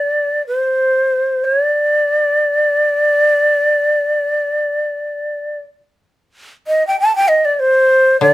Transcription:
Already playing: D5
0.47 C5
1.45 C#5
1.63 D5
6.67 D#5
6.87 G5
7.00 A5
7.16 G5
7.28 D#5
7.45 D5
7.60 C5
8.21 D3 D5

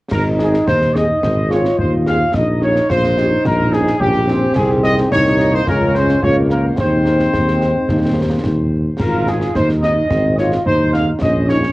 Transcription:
0.11 G#1 D#4 A#4, concert bass drum, snare, crash
0.38 C4 D#4 G#4, snare
0.54 snare
0.66 D#2 C5, concert bass drum, snare
0.82 snare
0.94 C4 D#4 G#4 D#5, snare
1.22 G#1 C4, concert bass drum, snare
1.50 C4 D#4 F4 G#4 C#5, snare
1.65 snare
1.78 D#2 C5, concert bass drum
2.06 C4 D#4 G#4 F5, snare
2.34 A#1 D#4 D#5, concert bass drum, snare
2.61 C#4 D#4 G4 C#5, snare
2.76 snare
2.89 A#1 F4 C5, concert bass drum, snare
3.04 snare
3.17 C#4 D#4 G4, snare
3.45 A#1 A#4, concert bass drum, snare
3.72 C#4 D#4 G4 G#4, snare
3.87 snare
4.00 A#1 C#4 G4, concert bass drum
4.28 C4 C#4 D#4 G4, snare
4.55 C2 C4 D#4 G#4, concert bass drum, snare, crash
4.83 D#5, snare
4.98 snare
5.10 C2 A#3 D#4 G4 C#5, concert bass drum, snare
5.26 snare
5.40 snare
5.54 C5
5.67 C#2 G#3 C#4 F4 A#4, concert bass drum, snare
5.95 C5, snare
6.09 snare
6.22 C#2 G#3 A#3 C#4 F4 C#5, concert bass drum
6.50 A#4, snare
6.77 D#2 G#3 C4 D#4 C5, concert bass drum, snare
7.06 snare
7.19 snare
7.33 D#2, concert bass drum, snare
7.48 snare
7.61 snare
7.88 D#2 G3 A#3 D#4, concert bass drum, snare
8.44 D#2, concert bass drum, snare
8.99 G#1 F4 A#4, concert bass drum, snare, crash
9.27 G#3 C4 D#4 G#4, snare
9.41 snare
9.54 D#2 D#4 C5, concert bass drum, snare
9.69 snare
9.82 G#3 C4 D#4 D#5, snare
10.09 G#1 C4, concert bass drum, snare
10.37 G#3 C4 D#4 F4 C#5, snare
10.52 snare
10.65 D#2 D#4 C5, concert bass drum
10.93 G#3 C4 D#4 F5, snare
11.21 A#1 C#4 D#5, concert bass drum, snare
11.48 G3 C#4 D#4 C#5, snare
11.63 snare

